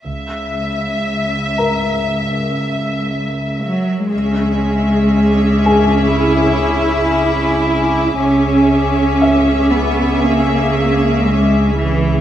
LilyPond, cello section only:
\new Staff \with { instrumentName = "Cello section" } { \clef bass \time 4/4 \key cis \dorian \tempo 4 = 59 cis,2.~ cis,8 fis8 | gis2 e'2 | cis'4. b8 ais4 gis8 e8 | }